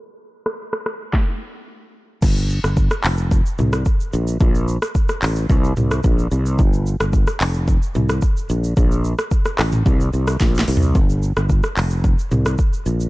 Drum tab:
CC |------------------------------------------------|x-----------------------------------------------|------------------------------------------------|------------------------------------------------|
HH |------------------------------------------------|------------------o-----------------------------|------------------o-----------------------------|------------------o-----------------------------|
SH |------------------------------------------------|x--x--x--x--x--x--x--x--x--x--x--x--x--x--x--x--|x--x--x--x--x--x--x--x--x--x--x--x--x--x--x--x--|x--x--x--x--x--x--x--x--x--x--x--x--x--x--x--x--|
CP |------------------------------------------------|------------------x-----------------------------|------------------x-----------------------------|------------------x-----------------------------|
SD |---------r-----r--r-----o-----------------------|---------r-----r-----------------r--------------|---------r-----r-----------------r--------------|---------r-----r-----------------r--------------|
T2 |------------------------------------------------|------------------------------o-----------------|------------------------------o-----------------|------------------------------o-----------------|
FT |------------------------------------------------|------------------------------------------------|------------------------------------------------|------------------------------------------------|
BD |------------------------o-----------------------|o-----------o-----------o-----------o-----------|o-----------o-----------o-----------o-----------|o-----------o-----------o-----------o-----------|

CC |------------------------------------------------|------------------------------------------------|
HH |------------------o-----------------------o-----|------------------o-----------------------------|
SH |x--x--x--x--x--x--x--x--x--x--x--x--x--x--x--x--|x--x--x--x--x--x--x--x--x--x--x--x--x--x--x--x--|
CP |------------------x-----------------------------|------------------x-----------------------------|
SD |---------r-----r--r--------------r--o---o-------|---------r-----r-----------------r--------------|
T2 |---------------------o--------------------------|------------------------------o-----------------|
FT |--------------------------------------------o---|------------------------------------------------|
BD |o-----------o-----------o-----------o-----------|o-----------o-----------o-----------o-----------|